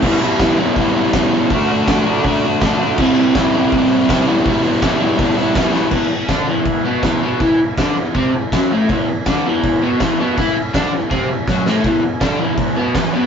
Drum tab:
CC |x-------|--------|x-------|--------|
HH |--o-o-o-|o-o-o-o-|--o-o-o-|o-o-o-o-|
SD |--o---o-|--o---o-|--o---o-|--o---oo|
BD |o-o-o-o-|o-o-o-o-|o-o-o-o-|o-o-o-o-|

CC |x-x-x-x-|x-x-x-x-|x-x-x-x-|x-x-x---|
HH |--------|--------|--------|--------|
SD |--o---o-|--o---o-|--o---o-|--o---oo|
BD |o-o-o-o-|o-o-o-o-|o-o-o-o-|o-o-o-o-|

CC |x-x-x-x-|
HH |--------|
SD |--o---o-|
BD |o-o-o-o-|